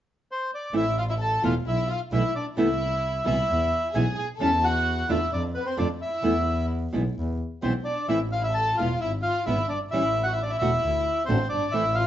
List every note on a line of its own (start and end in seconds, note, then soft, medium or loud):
0.32 0.51 C5 medium
0.54 0.74 D5 medium
0.73 1.40 A1 medium
0.73 0.82 E3 medium
0.73 0.83 A3 medium
0.73 0.83 C4 medium
0.73 0.83 E4 medium
0.73 0.96 E4 medium
0.73 0.97 E5 medium
0.98 1.03 F4 medium
0.98 1.03 F5 medium
1.09 1.14 E4 medium
1.09 1.15 E5 medium
1.19 1.41 A4 medium
1.19 1.42 A5 medium
1.43 1.63 E1 medium
1.43 1.52 B2 medium
1.43 1.52 E3 medium
1.43 1.52 A3 medium
1.43 1.53 B3 medium
1.43 1.53 E4 medium
1.43 1.53 F4 soft
1.43 1.55 F5 medium
1.65 1.85 B1 medium
1.65 1.87 E4 medium
1.65 1.88 E5 medium
1.87 1.98 F4 medium
1.87 2.01 F5 medium
2.12 2.31 B1 medium
2.12 2.21 B2 medium
2.12 2.21 E3 medium
2.12 2.21 A3 medium
2.12 2.21 B3 medium
2.12 2.33 E4 medium
2.12 2.21 E4 medium
2.12 2.34 E5 medium
2.35 2.46 D4 medium
2.35 2.45 D5 medium
2.56 3.23 C2 medium
2.56 2.66 C3 medium
2.56 2.66 E3 medium
2.56 2.67 A3 medium
2.56 2.67 B3 medium
2.56 3.21 E4 medium
2.56 2.67 E4 medium
2.56 3.25 E5 medium
3.24 3.45 C2 medium
3.24 3.34 B2 medium
3.24 3.35 E3 medium
3.24 3.35 G#3 medium
3.24 3.35 B3 medium
3.24 3.89 E4 medium
3.24 3.35 E4 medium
3.24 3.97 E5 medium
3.49 3.68 E2 medium
3.92 4.14 B1 medium
3.92 4.03 B2 medium
3.92 4.04 E3 medium
3.92 4.03 G#3 medium
3.92 4.04 B3 medium
3.92 4.04 E4 medium
3.92 4.14 G#4 medium
3.92 4.16 G#5 medium
4.15 4.26 G#4 medium
4.15 4.29 G#5 medium
4.37 5.05 E2 medium
4.37 4.49 E3 medium
4.37 4.49 G3 medium
4.37 4.49 C#4 medium
4.37 4.60 A4 medium
4.41 4.50 E4 medium
4.41 4.65 A5 medium
4.63 5.05 F#4 medium
4.63 5.10 F#5 medium
5.09 5.28 E2 medium
5.09 5.18 D3 medium
5.09 5.18 A3 medium
5.09 5.18 D4 medium
5.09 5.30 E4 medium
5.09 5.18 F4 medium
5.09 5.31 E5 medium
5.32 5.51 F2 medium
5.32 5.42 D4 medium
5.32 5.43 D5 medium
5.54 5.66 B3 medium
5.54 5.66 B4 medium
5.66 5.77 C4 medium
5.66 5.77 C5 medium
5.77 5.97 F2 medium
5.77 5.86 D3 medium
5.77 5.86 A3 medium
5.77 5.86 D4 medium
5.77 5.88 D4 medium
5.77 5.87 F4 medium
5.77 5.88 D5 medium
6.01 6.66 E4 medium
6.01 6.66 E5 medium
6.22 6.89 E2 medium
6.22 6.32 E3 medium
6.22 6.32 A3 medium
6.22 6.33 B3 medium
6.22 6.33 E4 medium
6.93 7.13 B1 medium
6.93 7.02 B2 medium
6.93 7.02 E3 medium
6.93 7.02 G#3 medium
6.93 7.02 B3 medium
6.93 7.02 E4 medium
7.18 7.36 E2 medium
7.62 7.82 B1 medium
7.62 7.71 B2 medium
7.62 7.71 E3 medium
7.62 7.71 G#3 medium
7.62 7.71 B3 medium
7.62 7.73 C4 soft
7.62 7.72 E4 medium
7.62 7.73 C5 medium
7.85 8.07 D4 medium
7.85 8.07 D5 medium
8.08 8.75 A1 medium
8.08 8.17 E3 medium
8.08 8.17 A3 medium
8.08 8.18 C4 medium
8.08 8.19 E4 soft
8.08 8.18 E4 medium
8.08 8.19 E5 medium
8.32 8.43 F4 medium
8.32 8.43 F5 medium
8.41 8.53 E4 medium
8.41 8.54 E5 medium
8.52 8.75 A4 medium
8.52 8.76 A5 medium
8.77 8.99 E1 medium
8.77 8.87 G#3 medium
8.77 8.88 B3 medium
8.77 8.88 E4 medium
8.77 8.99 F4 soft
8.77 8.99 F5 medium
8.99 9.21 G#1 medium
8.99 9.10 E4 medium
8.99 9.11 E5 medium
9.22 9.44 F4 medium
9.22 9.44 F5 medium
9.46 9.66 G#1 medium
9.46 9.55 G#3 medium
9.46 9.56 B3 medium
9.46 9.68 E4 medium
9.46 9.56 E4 medium
9.46 9.67 E5 medium
9.68 9.93 G1 soft
9.68 9.78 D4 medium
9.68 9.79 D5 medium
9.90 10.57 A1 medium
9.90 10.01 E3 medium
9.90 10.01 G3 medium
9.90 10.02 C#4 medium
9.90 10.21 E4 medium
9.90 10.25 E5 medium
9.94 10.02 E4 medium
10.23 10.33 F#4 soft
10.23 10.33 F#5 medium
10.32 10.42 E4 medium
10.32 10.42 E5 medium
10.42 10.51 D4 medium
10.42 10.51 D5 medium
10.50 10.60 E4 soft
10.50 10.57 E5 medium
10.58 10.80 E1 medium
10.58 10.69 D3 medium
10.58 10.69 A3 medium
10.58 10.70 D4 medium
10.58 11.25 E4 medium
10.58 10.70 F#4 medium
10.58 11.23 E5 medium
10.83 11.02 D2 medium
11.25 11.48 A1 medium
11.25 11.37 D3 medium
11.25 11.37 A3 medium
11.25 11.49 C4 medium
11.25 11.37 D4 medium
11.25 11.48 C5 medium
11.30 11.38 F#4 medium
11.49 11.74 G1 soft
11.49 11.72 D4 medium
11.49 11.73 D5 medium
11.72 12.07 A1 medium
11.72 11.82 E3 medium
11.72 11.82 A3 medium
11.72 11.83 C4 medium
11.72 11.95 E4 medium
11.72 11.83 E4 medium
11.72 11.96 E5 medium
11.95 12.07 F4 medium
11.95 12.07 F5 medium